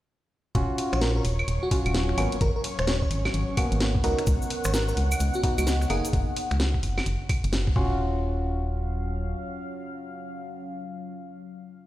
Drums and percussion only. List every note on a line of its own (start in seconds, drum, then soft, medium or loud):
0.55 kick loud
0.55 closed hi-hat medium
0.78 open hi-hat loud
0.93 finger snap medium
0.93 closed hi-hat soft
1.01 snare loud
1.01 closed hi-hat medium
1.25 open hi-hat loud
1.39 claves medium
1.48 closed hi-hat medium
1.71 kick loud
1.71 open hi-hat loud
1.86 closed hi-hat medium
1.86 claves medium
1.95 snare loud
1.95 closed hi-hat medium
2.09 finger snap soft
2.18 open hi-hat loud
2.18 claves medium
2.32 closed hi-hat medium
2.41 kick loud
2.41 closed hi-hat medium
2.64 open hi-hat loud
2.79 finger snap medium
2.79 closed hi-hat soft
2.87 snare loud
2.87 closed hi-hat medium
3.02 kick medium
3.11 open hi-hat medium
3.25 snare medium
3.25 claves medium
3.34 closed hi-hat medium
3.57 kick loud
3.57 open hi-hat loud
3.57 claves medium
3.72 closed hi-hat medium
3.81 snare loud
3.81 closed hi-hat medium
3.95 kick loud
4.04 open hi-hat loud
4.19 finger snap medium
4.19 closed hi-hat medium
4.27 kick loud
4.27 closed hi-hat medium
4.27 cabasa medium
4.42 cabasa soft
4.50 open hi-hat loud
4.64 finger snap medium
4.64 closed hi-hat soft
4.64 cabasa medium
4.74 snare loud
4.74 closed hi-hat medium
4.74 cabasa medium
4.88 cabasa soft
4.97 open hi-hat loud
5.11 cabasa medium
5.11 claves medium
5.20 closed hi-hat medium
5.20 cabasa medium
5.34 cabasa soft
5.43 kick loud
5.43 open hi-hat loud
5.58 closed hi-hat medium
5.58 cabasa medium
5.58 claves medium
5.67 snare loud
5.67 closed hi-hat medium
5.67 cabasa medium
5.81 finger snap soft
5.81 cabasa soft
5.90 open hi-hat medium
5.90 claves medium
6.05 closed hi-hat medium
6.05 cabasa medium
6.13 kick loud
6.13 closed hi-hat medium
6.36 open hi-hat loud
6.51 finger snap medium
6.51 closed hi-hat soft
6.60 snare loud
6.60 closed hi-hat medium
6.74 kick medium
6.83 open hi-hat medium
6.98 snare medium
6.98 claves medium
7.06 closed hi-hat medium
7.29 kick loud
7.29 open hi-hat medium
7.29 claves medium
7.44 closed hi-hat medium
7.53 snare loud
7.53 closed hi-hat medium
7.67 kick loud
7.76 kick loud